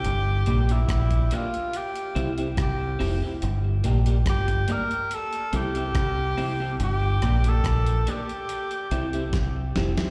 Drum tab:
HH |x-xxxxxxxxxxx-o-|x-xxxxxxxxxxx-o-|x-xxxxxxxxxxx-x-|
SD |----r-------r---|----r-------r---|--r-r-------o-oo|
BD |----oo------o---|----oo------o---|----o-------o---|